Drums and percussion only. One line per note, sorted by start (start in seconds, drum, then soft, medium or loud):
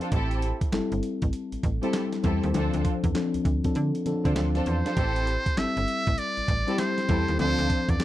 0.01 closed hi-hat soft
0.12 kick loud
0.12 closed hi-hat medium
0.31 closed hi-hat medium
0.42 closed hi-hat medium
0.61 kick medium
0.61 closed hi-hat medium
0.72 snare loud
0.72 clap medium
0.72 closed hi-hat medium
0.92 closed hi-hat medium
1.03 closed hi-hat medium
1.22 kick medium
1.22 closed hi-hat medium
1.33 closed hi-hat medium
1.52 closed hi-hat soft
1.63 kick medium
1.63 closed hi-hat medium
1.83 closed hi-hat soft
1.93 snare loud
1.93 clap medium
1.93 closed hi-hat medium
2.13 snare medium
2.13 closed hi-hat soft
2.24 kick medium
2.24 closed hi-hat medium
2.43 closed hi-hat soft
2.54 closed hi-hat medium
2.73 closed hi-hat medium
2.85 kick medium
2.85 closed hi-hat medium
3.04 kick medium
3.04 closed hi-hat medium
3.15 snare loud
3.15 clap medium
3.15 closed hi-hat medium
3.34 closed hi-hat medium
3.45 kick medium
3.45 closed hi-hat medium
3.64 kick medium
3.64 closed hi-hat medium
3.75 closed hi-hat medium
3.95 closed hi-hat soft
4.06 closed hi-hat medium
4.25 kick medium
4.25 closed hi-hat soft
4.36 snare loud
4.36 clap medium
4.36 closed hi-hat medium
4.55 snare medium
4.55 closed hi-hat soft
4.66 closed hi-hat medium
4.86 snare medium
4.86 closed hi-hat soft
4.97 kick loud
4.97 closed hi-hat medium
5.16 closed hi-hat medium
5.27 closed hi-hat medium
5.46 kick medium
5.46 closed hi-hat medium
5.57 snare loud
5.57 clap medium
5.57 closed hi-hat medium
5.77 closed hi-hat medium
5.88 closed hi-hat medium
6.07 kick medium
6.07 closed hi-hat medium
6.18 closed hi-hat medium
6.37 closed hi-hat soft
6.48 kick medium
6.48 closed hi-hat medium
6.68 closed hi-hat soft
6.78 snare loud
6.78 clap medium
6.78 closed hi-hat medium
6.98 snare medium
6.98 closed hi-hat soft
7.09 kick loud
7.09 closed hi-hat medium
7.28 closed hi-hat soft
7.39 closed hi-hat medium
7.58 closed hi-hat medium
7.70 kick loud
7.70 closed hi-hat medium
7.89 kick loud
7.89 closed hi-hat medium
8.00 snare loud
8.00 clap medium
8.00 closed hi-hat medium